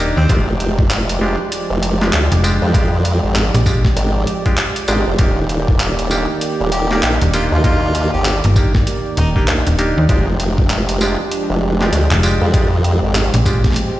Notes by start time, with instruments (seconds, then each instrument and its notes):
Already playing: fm bass D#1, analog synth pad D#3 A#3 G4 D5
0.00 clav A#3 D4 D#4 G4
0.17 fm bass D#2, harmonica C4
0.29 wobble bass F1, analog synth pad F3 G#3 G4, clav G#3 D4 F4 G4, kick, closed hi-hat
0.60 closed hi-hat
0.79 kick
0.90 wobble bass F1, clap, closed hi-hat
1.09 closed hi-hat
1.21 clav G#3 D4 F4 G4
1.52 closed hi-hat
1.70 wobble bass F1
1.83 closed hi-hat
2.01 clav G#3 D4 F4 G4, snare
2.13 wobble bass D2, clap, closed hi-hat
2.32 fm bass F1, closed hi-hat
2.44 clav G#3 D4 F4 G4, closed hi-hat, tambourine
2.62 wobble bass F2
2.74 clav G#3 D4 F4 G4, kick, closed hi-hat
3.05 closed hi-hat
3.23 wobble bass G#1
3.36 clap, closed hi-hat
3.54 fm bass A#1, closed hi-hat
3.66 clav G#3 D4 F4 G4, kick, tambourine
3.85 kick, snare
3.96 wobble bass G#1, closed hi-hat
4.27 closed hi-hat
4.46 clav G#3 D4 F4 G4, kick, closed hi-hat
4.57 clap, closed hi-hat
4.76 closed hi-hat
4.88 wobble bass G#1, clav G#3 D4 F4 G4, closed hi-hat, tambourine
5.07 wobble bass F1
5.19 wobble bass D#1, analog synth pad D#3 A#3, clav A#3 D4 D#4 G4, kick, closed hi-hat
5.49 closed hi-hat
5.68 kick
5.80 wobble bass D#1, clap, closed hi-hat
5.99 closed hi-hat
6.11 clav A#3 D4 D#4 G4, tambourine
6.41 closed hi-hat
6.61 wobble bass D#1
6.72 harmonica G4, closed hi-hat
6.91 clav A#3 D4 D#4 G4, harmonica G4, snare
7.03 wobble bass A#1, harmonica G4, clap, closed hi-hat
7.21 fm bass D#1, closed hi-hat
7.34 clav A#3 D4 D#4 G4, harmonica F4, closed hi-hat, tambourine
7.52 wobble bass D#2, harmonica F4
7.64 clav A#3 D4 D#4 G4, harmonica F4, kick, closed hi-hat
7.95 closed hi-hat
8.14 wobble bass G1, harmonica G4
8.25 harmonica G4, clap, closed hi-hat
8.44 fm bass G1, closed hi-hat
8.56 clav A#3 D4 D#4 G4, kick, tambourine
8.75 kick, snare
8.87 closed hi-hat
9.17 fm bass D#1, harmonica D#4, closed hi-hat
9.36 clav A#3 D4 D#4 G4, harmonica D#4, kick
9.48 wobble bass A#1, clap, closed hi-hat
9.67 fm bass D#1, closed hi-hat
9.79 clav A#3 D4 D#4 G4, closed hi-hat
9.98 fm bass D#2
10.08 wobble bass F1, analog synth pad F3 G#3 D4 G4, clav G#3 D4 F4 G4, kick, closed hi-hat
10.40 closed hi-hat
10.58 kick
10.70 wobble bass F1, clap, closed hi-hat
10.89 closed hi-hat
11.01 clav G#3 D4 F4 G4, tambourine
11.31 closed hi-hat
11.50 wobble bass F1
11.81 clav G#3 D4 F4 G4, snare
11.92 wobble bass D2, closed hi-hat
12.11 fm bass F1, clap
12.23 clav G#3 D4 F4 G4, closed hi-hat, tambourine
12.41 wobble bass F2
12.54 clav G#3 D4 F4 G4, analog synth pad C4, kick, closed hi-hat
12.84 closed hi-hat
13.02 wobble bass G#1
13.15 clap, closed hi-hat
13.34 fm bass A#1, closed hi-hat
13.46 clav G#3 D4 F4 G4, kick, tambourine
13.64 kick, snare, closed hi-hat
13.66 snare
13.70 snare
13.72 snare
13.74 snare, closed hi-hat, reverse cymbal